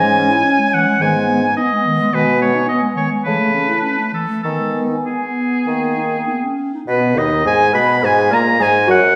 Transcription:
Already playing: G#2 C#4 G#5
0.03 G#3
0.17 C#4
0.30 E4
0.45 C#4
0.59 G#3
0.74 E3 F#5
0.87 G#3
0.99 G#2 D#3 B3 G#5
1.16 G#3
1.28 B3
1.43 D#4
1.57 B3 D#5
1.72 G#3
1.86 D#3
2.00 G#3
2.13 B2 D#3 B4 G#5
2.25 G#3
2.39 B3 C#5
2.54 D#4
2.67 B3 D#5
2.82 G#3
2.95 D#3 C#5
3.10 G#3
3.25 C#3 E3 A3 B4 A5
3.39 A3
3.54 C#4
3.68 E4
3.83 C#4
3.98 A3
4.13 E3 A4
4.28 A3
4.43 D#3 B3 A4 G#5
4.59 G#3
4.76 B3
4.90 D#4
5.06 B3 G#4
5.67 D#3 A#3 G5
5.97 D#4
6.28 B3
6.43 C#4
6.74 D#4
6.87 B2 B3 B4
7.16 D#2 D#3 D#4 D#5
7.45 G#2 G#3 G#4 G#5
7.73 B2 B3 B4 B5
8.03 G#2 G#3 G#4 G#5
8.30 A#2 A#3 A#4 A#5
8.59 G#2 G#3 G#4 G#5
8.87 F#2 F#3 F#4 F#5

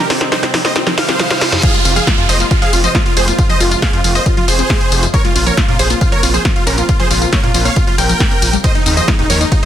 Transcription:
Already playing: C3 D#3 G3 D#4 G4, riser
0.10 C2 C4 F4, snare, open hi-hat
0.21 C4, snare, closed hi-hat
0.32 F3 D#4 C5, snare, closed hi-hat
0.43 G1 C4 F4, snare, closed hi-hat
0.54 C2 F3 C4, snare, open hi-hat
0.65 A#3 C5 D#5, snare, open hi-hat
0.76 C4 F4, snare, closed hi-hat, reverse cymbal
0.86 F3 C4, snare, closed hi-hat
0.97 C2 F4 C5 F5, snare, open hi-hat
1.08 C4, snare, closed hi-hat
1.20 F3, snare, closed hi-hat
1.30 F4, snare, closed hi-hat
1.41 G1 F3, snare, open hi-hat
1.52 F2, snare, closed hi-hat
1.63 C3 F3 G#3 F4 G#4 F5, kick, closed hi-hat, crash, tambourine, downlifter
1.74 G#3 F4, closed hi-hat
1.85 F1 C4 F4, open hi-hat, tambourine
1.96 F3 G#4 F5, closed hi-hat, tambourine
2.07 F3 F4, kick, snare, closed hi-hat, tambourine
2.18 F2 F4, closed hi-hat
2.29 F1 F3 C5 D#5, open hi-hat, tambourine
2.40 A#3 F4, closed hi-hat, tambourine
2.51 F4, kick, closed hi-hat, tambourine
2.62 F3 G#4 F5, closed hi-hat
2.73 F1 C4 F4, open hi-hat, tambourine
2.84 F3 C5 D#5, closed hi-hat, tambourine
2.95 F3 F4, kick, snare, closed hi-hat, tambourine
3.06 F4, closed hi-hat
3.17 F1 G#4 C5, open hi-hat, tambourine
3.27 A#3 F4, closed hi-hat, tambourine
3.38 F4, kick, closed hi-hat, tambourine
3.49 F3 C5 D#5, closed hi-hat
3.60 F1 F4, open hi-hat, tambourine
3.71 F4, closed hi-hat, tambourine
3.82 F3 G#4 F5, kick, snare, closed hi-hat, tambourine
3.93 F2 F4, closed hi-hat
4.04 F1 F3 F4, open hi-hat, tambourine
4.15 A#3 C5 D#5, open hi-hat, tambourine
4.26 F4, kick, closed hi-hat, tambourine
4.37 F3 F4, closed hi-hat
4.48 F1 F4 G#4 C5, open hi-hat, tambourine
4.59 C4, closed hi-hat, tambourine
4.70 F3, kick, snare, closed hi-hat, tambourine
4.81 F4, closed hi-hat
4.92 F1 F3, open hi-hat, tambourine
5.03 F2, closed hi-hat, tambourine
5.13 C#3 F3 A#3 C4 F4 A#4 C#5, kick, closed hi-hat, tambourine
5.25 G#3 F4, closed hi-hat
5.35 A#1 C4 F4, open hi-hat, tambourine
5.46 F3 A#4 C#5, closed hi-hat, tambourine
5.57 F3 F4, kick, snare, closed hi-hat, tambourine
5.68 F2 A#2 F4, closed hi-hat
5.79 A#1 F3 G#4 C5, open hi-hat, tambourine
5.90 A#3 F4, closed hi-hat, tambourine
6.01 F4, kick, closed hi-hat, tambourine
6.12 F3 A#4 C#5, closed hi-hat
6.23 A#1 C4 F4, open hi-hat, tambourine
6.34 F3 G#4 C5, closed hi-hat, tambourine
6.45 F3 F4, kick, snare, closed hi-hat, tambourine
6.56 F4, closed hi-hat
6.67 A#1 C#4 A#4, open hi-hat, tambourine
6.78 A#3 F4, closed hi-hat, tambourine
6.89 F4, kick, closed hi-hat, tambourine
6.99 F3 G#4 C5, closed hi-hat
7.10 A#1 F4, open hi-hat, tambourine
7.22 F4, closed hi-hat, tambourine
7.32 F3 A#4 C#5, kick, snare, closed hi-hat, tambourine
7.43 A#2 F4, closed hi-hat
7.54 A#1 F3 F4, open hi-hat, tambourine
7.65 A#3 C#5 F5, open hi-hat, tambourine
7.76 F4, kick, closed hi-hat, tambourine
7.87 F3 F4, closed hi-hat
7.98 A#1 D#3 A#4 G5, open hi-hat, tambourine
8.09 F3, closed hi-hat, tambourine
8.20 G#3, kick, snare, closed hi-hat, tambourine
8.31 C4, closed hi-hat
8.42 A#1 F4, open hi-hat, tambourine
8.53 G3, closed hi-hat, tambourine
8.64 A#2 D#3 F3 G#3 D#4 G#4 C5 D#5, kick, closed hi-hat, ride, tambourine
8.75 G#3 D#4, closed hi-hat
8.86 D#2 C4 D#4, open hi-hat, tambourine
8.97 F3 C5 D#5, closed hi-hat, tambourine
9.08 F3 D#4, kick, snare, closed hi-hat, ride, tambourine
9.19 D#1 F2 D#4, closed hi-hat
9.30 D#2 F3 A#4 C#5, open hi-hat, tambourine
9.41 A#3 D#4, closed hi-hat, tambourine
9.52 D#4 F4, kick, closed hi-hat, ride, tambourine

